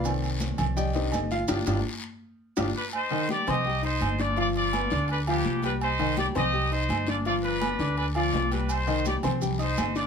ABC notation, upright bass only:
X:1
M:4/4
L:1/8
Q:1/4=167
K:Cm
V:1 name="Upright bass" clef=bass
C,,3 C,,3 G,,,2 | G,,, G,,, z4 G,,, z | z3 C,,3 G,,,2- | G,,,3 D,,3 C,,2- |
C,,3 C,,3 G,,,2- | G,,,3 D,,3 C,,2- | C,,3 C,,3 G,,,2 |]